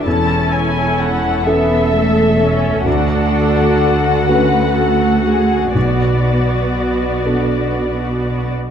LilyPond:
<<
  \new Staff \with { instrumentName = "Violin section" } { \time 6/8 \key b \minor \tempo 4. = 42 << { a''8 gis''8 fis''8 e''4. | fis''2. | d''2. | } \\ { a'2. | a'4. b'8 a'8 gis'8 | fis'2. | } >> }
  \new Staff \with { instrumentName = "Grand piano" } { \time 6/8 \key b \minor e,4. <cis' e' a'>4. | d,4. <a cis' fis'>4. | b,,4. <d' fis' a'>4. | }
  \new Staff \with { instrumentName = "Viola section" } { \time 6/8 \key b \minor << { e'4. a'4. | fis'2. | fis'2. | } \\ { cis'4. b8 a8 cis'8 | d'4. a4. | b2. | } >> }
  \new Staff \with { instrumentName = "Cello section" } { \clef bass \time 6/8 \key b \minor e,2. | d,2. | b,2. | }
  \new Staff \with { instrumentName = "Double bass section" } { \clef bass \time 6/8 \key b \minor e,,2. | d,2. | b,,2. | }
>>